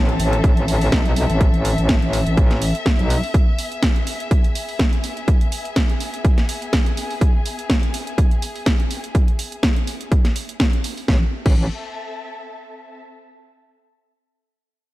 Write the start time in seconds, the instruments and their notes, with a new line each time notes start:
Already playing: wobble bass A1, string section C4 A4 E5 A5
0.09 closed hi-hat
0.20 wobble bass A1, open hi-hat
0.33 closed hi-hat
0.44 wobble bass A1, kick, closed hi-hat
0.57 closed hi-hat
0.68 open hi-hat
0.81 open hi-hat
0.92 wobble bass B1, kick, snare, closed hi-hat
1.06 closed hi-hat
1.16 open hi-hat
1.30 wobble bass A1, closed hi-hat
1.41 kick, closed hi-hat
1.54 closed hi-hat
1.65 open hi-hat
1.78 wobble bass A1, closed hi-hat
1.89 kick, snare, closed hi-hat
2.02 closed hi-hat
2.13 open hi-hat
2.26 wobble bass A1, closed hi-hat
2.37 kick, closed hi-hat
2.51 snare, closed hi-hat
2.62 open hi-hat
2.75 closed hi-hat
2.86 kick, snare, closed hi-hat
2.99 wobble bass B1, closed hi-hat
3.10 open hi-hat
3.23 open hi-hat
3.34 string section B3, kick, closed hi-hat
3.58 string section G#5, open hi-hat
3.63 string section G#4
3.72 closed hi-hat
3.83 kick, snare, closed hi-hat
3.96 closed hi-hat
4.07 open hi-hat
4.20 closed hi-hat
4.31 kick, closed hi-hat
4.44 closed hi-hat
4.55 open hi-hat
4.69 open hi-hat
4.79 kick, snare, closed hi-hat
4.93 closed hi-hat
5.04 open hi-hat
5.17 closed hi-hat
5.28 kick, closed hi-hat
5.41 closed hi-hat
5.52 open hi-hat
5.65 closed hi-hat
5.76 kick, snare, closed hi-hat
5.90 closed hi-hat
6.00 open hi-hat
6.14 closed hi-hat
6.25 kick, closed hi-hat
6.38 snare, closed hi-hat
6.49 open hi-hat
6.62 closed hi-hat
6.73 kick, snare, closed hi-hat
6.86 closed hi-hat
6.97 open hi-hat
7.11 open hi-hat
7.21 kick, closed hi-hat
7.46 open hi-hat
7.59 closed hi-hat
7.70 kick, snare, closed hi-hat
7.83 closed hi-hat
7.94 open hi-hat
8.07 closed hi-hat
8.18 kick, closed hi-hat
8.31 closed hi-hat
8.42 open hi-hat
8.56 open hi-hat
8.66 kick, snare, closed hi-hat
8.80 closed hi-hat
8.91 open hi-hat
9.04 closed hi-hat
9.15 kick, closed hi-hat
9.28 closed hi-hat
9.39 open hi-hat
9.52 closed hi-hat
9.63 kick, snare, closed hi-hat
9.76 closed hi-hat
9.87 open hi-hat
10.01 closed hi-hat
10.12 kick, closed hi-hat
10.25 snare, closed hi-hat
10.36 open hi-hat
10.49 closed hi-hat
10.60 kick, snare, closed hi-hat
10.73 closed hi-hat
10.84 open hi-hat
10.97 open hi-hat
11.08 wobble bass A1, string section C4, kick, snare
11.16 string section A4
11.24 string section E5
11.31 string section A5
11.46 wobble bass A1, kick, crash